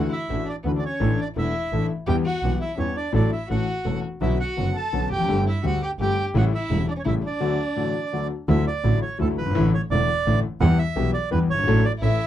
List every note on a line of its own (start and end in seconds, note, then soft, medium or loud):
0.03 0.08 F#4 medium
0.03 0.11 F#5 medium
0.09 0.43 E4 medium
0.09 0.49 E5 medium
0.29 0.44 A1 medium
0.29 0.45 A2 soft
0.29 0.44 E3 soft
0.29 0.44 A3 soft
0.29 0.45 D4 soft
0.29 0.45 F#4 soft
0.45 0.54 D4 medium
0.45 0.56 D5 medium
0.63 0.80 D2 medium
0.63 0.80 D3 medium
0.63 0.80 E3 soft
0.63 0.80 A3 soft
0.63 0.68 B3 medium
0.63 0.80 D4 soft
0.63 0.80 F#4 medium
0.63 0.71 B4 medium
0.76 0.82 D4 soft
0.76 0.84 D5 medium
0.83 1.16 C#4 medium
0.83 1.20 C#5 medium
1.00 1.15 A1 medium
1.00 1.15 A2 medium
1.00 1.15 E3 medium
1.00 1.16 A3 medium
1.00 1.16 D4 medium
1.00 1.16 A4 medium
1.17 1.25 D4 medium
1.17 1.28 D5 medium
1.35 1.51 E1 medium
1.35 1.51 E2 medium
1.35 1.51 E3 soft
1.35 1.51 A3 soft
1.35 1.51 D4 soft
1.35 1.85 E4 medium
1.35 1.51 A4 soft
1.35 1.87 E5 medium
1.72 1.87 A1 medium
1.72 1.87 A2 medium
1.72 1.87 E3 soft
1.72 1.87 A3 soft
1.72 1.87 D4 soft
1.72 1.87 A4 medium
2.07 2.22 E2 medium
2.07 2.22 E3 medium
2.07 2.22 G3 medium
2.07 2.22 B3 medium
2.07 2.15 G4 medium
2.07 2.22 G4 medium
2.07 2.16 G5 medium
2.24 2.57 F#4 medium
2.24 2.59 F#5 medium
2.42 2.57 B1 medium
2.42 2.58 B1 soft
2.42 2.58 B2 soft
2.42 2.58 E3 soft
2.42 2.58 G3 soft
2.42 2.58 B3 soft
2.42 2.58 G4 soft
2.61 2.77 E4 medium
2.61 2.79 E5 medium
2.77 2.92 E2 medium
2.77 2.93 E2 medium
2.77 2.93 E3 medium
2.77 2.92 G3 soft
2.77 2.93 B3 soft
2.77 2.94 C#4 medium
2.77 2.93 G4 soft
2.77 2.97 C#5 medium
2.97 3.13 D4 medium
2.97 3.13 D5 medium
3.12 3.28 A1 medium
3.12 3.28 A2 medium
3.12 3.28 F#3 medium
3.12 3.28 A3 medium
3.12 3.28 D4 medium
3.12 3.30 D4 medium
3.12 3.28 A4 medium
3.12 3.31 D5 medium
3.31 3.48 E4 medium
3.31 3.49 E5 medium
3.49 3.65 A1 soft
3.49 3.65 A1 medium
3.49 3.65 A2 soft
3.49 3.64 E3 soft
3.49 3.65 A3 soft
3.49 3.65 C#4 soft
3.49 3.99 F#4 medium
3.49 3.65 A4 soft
3.49 4.00 F#5 medium
3.85 4.00 E1 soft
3.85 4.01 E1 medium
3.85 4.00 E2 medium
3.85 4.00 E3 soft
3.85 4.00 A3 soft
3.85 4.00 C#4 soft
3.85 4.00 A4 soft
4.21 4.36 B1 medium
4.21 4.36 B2 medium
4.21 4.36 D3 medium
4.21 4.36 B3 medium
4.21 4.36 C#4 medium
4.21 4.38 E4 medium
4.21 4.36 F#4 medium
4.21 4.38 E5 medium
4.39 4.72 F#4 medium
4.39 4.76 F#5 medium
4.57 4.72 F#1 medium
4.57 4.72 F#2 soft
4.57 4.72 D3 soft
4.57 4.72 B3 soft
4.57 4.72 C#4 soft
4.57 4.72 F#4 medium
4.75 5.08 A4 medium
4.75 5.09 A5 medium
4.93 5.08 B1 medium
4.93 5.08 B2 medium
4.93 5.08 D3 soft
4.93 5.08 B3 soft
4.93 5.08 C#4 soft
4.93 5.08 F#4 medium
5.11 5.28 F1 medium
5.11 5.44 G4 medium
5.11 5.44 G5 medium
5.16 5.20 E2 medium
5.20 5.24 F2 medium
5.24 5.28 F#2 medium
5.28 5.43 G1 medium
5.28 5.43 G2 medium
5.28 5.43 D3 medium
5.28 5.43 G3 medium
5.28 5.43 A3 medium
5.28 5.43 G4 medium
5.47 5.63 E4 medium
5.47 5.66 E5 medium
5.63 5.78 D2 medium
5.63 5.79 D2 medium
5.63 5.78 D3 medium
5.63 5.78 G3 soft
5.63 5.78 A3 soft
5.63 5.81 F#4 medium
5.63 5.79 G4 medium
5.67 5.82 F#5 medium
5.83 5.90 G4 medium
5.83 5.91 G5 medium
5.99 6.14 G1 medium
5.99 6.15 G1 medium
5.99 6.15 G2 medium
5.99 6.15 D3 soft
5.99 6.14 G3 soft
5.99 6.15 A3 soft
5.99 6.24 G4 medium
5.99 6.15 G4 medium
5.99 6.25 G5 loud
6.34 6.49 A1 medium
6.34 6.50 A1 medium
6.34 6.49 A2 medium
6.34 6.49 C#3 medium
6.34 6.50 G3 medium
6.34 6.50 A3 medium
6.34 6.49 E4 medium
6.34 6.44 F#4 medium
6.34 6.45 F#5 medium
6.54 6.86 E4 medium
6.54 6.86 E5 loud
6.70 6.85 E1 medium
6.70 6.85 E2 medium
6.70 6.85 C#3 soft
6.70 6.85 G3 soft
6.70 6.85 A3 soft
6.70 6.85 E4 soft
6.88 6.92 D4 medium
6.88 6.93 D5 medium
6.96 7.00 C#4 medium
6.96 7.03 C#5 medium
7.04 7.20 A1 medium
7.04 7.20 A2 medium
7.04 7.20 C#3 soft
7.04 7.20 G3 soft
7.04 7.20 A3 soft
7.04 7.13 E4 medium
7.04 7.20 E4 medium
7.04 7.15 E5 medium
7.23 8.26 D4 medium
7.23 8.28 D5 medium
7.40 7.55 D2 medium
7.40 7.56 D3 medium
7.40 7.55 F#3 medium
7.40 7.56 A3 medium
7.40 7.56 F#4 medium
7.76 7.92 A1 medium
7.76 7.91 A2 soft
7.76 7.91 D3 soft
7.76 7.91 F#3 soft
7.76 7.91 A3 soft
7.76 7.91 F#4 soft
8.13 8.27 D2 medium
8.13 8.28 D3 medium
8.13 8.28 F#3 soft
8.13 8.28 A3 soft
8.13 8.28 F#4 soft
8.48 8.63 D2 medium
8.48 8.63 D3 medium
8.48 8.63 F#3 medium
8.48 8.63 A3 medium
8.48 8.63 E4 medium
8.48 8.65 E5 medium
8.67 9.00 D5 medium
8.84 8.99 A1 medium
8.84 8.99 A2 medium
8.84 8.98 D3 medium
8.84 8.99 F#3 soft
8.84 8.99 A3 soft
8.84 8.99 E4 medium
9.02 9.18 C#5 medium
9.19 9.34 D2 medium
9.19 9.35 D2 medium
9.19 9.34 D3 medium
9.19 9.34 F#3 medium
9.19 9.34 A3 medium
9.19 9.34 E4 medium
9.19 9.28 A4 medium
9.37 9.45 F#1 medium
9.37 9.55 G1 medium
9.37 9.70 B4 medium
9.45 9.50 G1 medium
9.51 9.55 G#1 medium
9.55 9.70 A1 loud
9.55 9.70 A2 loud
9.55 9.70 D3 medium
9.55 9.70 E3 medium
9.55 9.70 A3 medium
9.55 9.70 E4 medium
9.74 9.82 C#5 medium
9.91 10.05 E1 medium
9.91 10.06 E1 medium
9.91 10.05 E2 medium
9.91 10.05 D3 medium
9.91 10.06 E3 soft
9.91 10.05 A3 medium
9.91 10.05 E4 medium
9.91 10.40 D5 loud
10.26 10.40 A1 medium
10.26 10.41 A1 medium
10.26 10.41 A2 medium
10.26 10.41 D3 medium
10.26 10.41 E3 medium
10.26 10.41 A3 soft
10.26 10.41 E4 medium
10.61 10.75 E2 loud
10.61 10.76 E2 loud
10.61 10.76 E3 medium
10.61 10.76 G3 medium
10.61 10.76 B3 medium
10.61 10.76 G4 loud
10.61 10.79 F#5 loud
10.79 11.11 E5 loud
10.96 11.11 B1 medium
10.96 11.11 B2 medium
10.96 11.10 E3 medium
10.96 11.11 G3 medium
10.96 11.11 B3 medium
10.96 11.11 G4 medium
11.14 11.30 D5 medium
11.31 11.46 E2 medium
11.31 11.46 E3 medium
11.31 11.46 G3 medium
11.31 11.46 B3 soft
11.31 11.46 G4 medium
11.31 11.39 B4 loud
11.49 11.66 G1 medium
11.49 11.86 C#5 loud
11.54 11.58 F#1 medium
11.59 11.62 G1 medium
11.64 11.67 G#1 medium
11.64 11.81 A1 loud
11.64 11.81 F#3 medium
11.64 11.81 A3 medium
11.64 11.81 A4 medium
11.68 11.82 A1 medium
11.68 11.82 A2 loud
11.68 11.82 D4 medium
11.85 11.92 D5 loud
11.98 12.16 A1 medium
11.98 12.17 E3 medium
11.98 12.17 A3 medium
11.98 12.27 E4 medium
12.02 12.17 A1 medium
12.02 12.17 A2 medium
12.02 12.17 C#4 soft
12.02 12.17 A4 medium
12.02 12.27 E5 loud